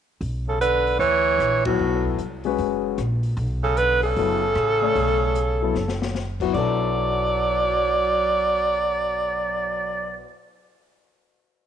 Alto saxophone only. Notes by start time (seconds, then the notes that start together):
0.49 A4
0.61 B4
0.99 C#5
1.66 F#4
3.63 A4
3.78 B4
4.03 A4
6.54 D5